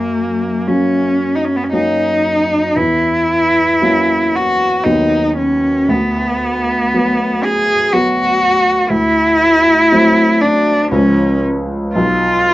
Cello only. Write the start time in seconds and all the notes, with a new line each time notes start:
Already playing: A#3
0.68 C#4
1.36 D#4
1.45 C#4
1.56 B3
1.64 C#4
1.73 D#4
2.77 E4
4.35 F#4
4.84 D#4
5.37 C#4
5.90 B3
7.44 G#4
7.93 F#4
8.90 E4
10.41 D4
10.91 C#4
11.94 F4